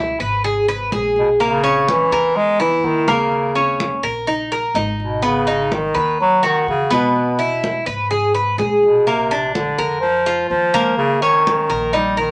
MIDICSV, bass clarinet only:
0, 0, Header, 1, 2, 480
1, 0, Start_track
1, 0, Tempo, 479233
1, 1402, Time_signature, 4, 2, 24, 8
1, 12330, End_track
2, 0, Start_track
2, 0, Title_t, "Bass clarinet"
2, 0, Program_c, 0, 71
2, 0, Note_on_c, 0, 47, 82
2, 198, Note_off_c, 0, 47, 0
2, 1190, Note_on_c, 0, 47, 75
2, 1291, Note_off_c, 0, 47, 0
2, 1434, Note_on_c, 0, 49, 97
2, 1901, Note_on_c, 0, 52, 92
2, 1916, Note_off_c, 0, 49, 0
2, 2367, Note_on_c, 0, 56, 100
2, 2382, Note_off_c, 0, 52, 0
2, 2611, Note_on_c, 0, 52, 88
2, 2626, Note_off_c, 0, 56, 0
2, 2856, Note_on_c, 0, 51, 90
2, 2871, Note_off_c, 0, 52, 0
2, 3097, Note_on_c, 0, 49, 87
2, 3112, Note_off_c, 0, 51, 0
2, 4050, Note_off_c, 0, 49, 0
2, 5019, Note_on_c, 0, 47, 78
2, 5250, Note_on_c, 0, 49, 94
2, 5265, Note_off_c, 0, 47, 0
2, 5739, Note_on_c, 0, 51, 88
2, 5754, Note_off_c, 0, 49, 0
2, 6209, Note_off_c, 0, 51, 0
2, 6215, Note_on_c, 0, 54, 93
2, 6463, Note_on_c, 0, 51, 93
2, 6478, Note_off_c, 0, 54, 0
2, 6693, Note_off_c, 0, 51, 0
2, 6699, Note_on_c, 0, 49, 85
2, 6915, Note_off_c, 0, 49, 0
2, 6940, Note_on_c, 0, 47, 78
2, 7852, Note_off_c, 0, 47, 0
2, 8844, Note_on_c, 0, 47, 74
2, 9085, Note_on_c, 0, 48, 86
2, 9100, Note_off_c, 0, 47, 0
2, 9552, Note_off_c, 0, 48, 0
2, 9558, Note_on_c, 0, 50, 86
2, 10006, Note_off_c, 0, 50, 0
2, 10019, Note_on_c, 0, 53, 94
2, 10475, Note_off_c, 0, 53, 0
2, 10507, Note_on_c, 0, 53, 91
2, 10959, Note_off_c, 0, 53, 0
2, 10990, Note_on_c, 0, 49, 98
2, 11234, Note_on_c, 0, 51, 92
2, 11249, Note_off_c, 0, 49, 0
2, 11954, Note_on_c, 0, 55, 97
2, 11969, Note_off_c, 0, 51, 0
2, 12195, Note_off_c, 0, 55, 0
2, 12210, Note_on_c, 0, 51, 81
2, 12330, Note_off_c, 0, 51, 0
2, 12330, End_track
0, 0, End_of_file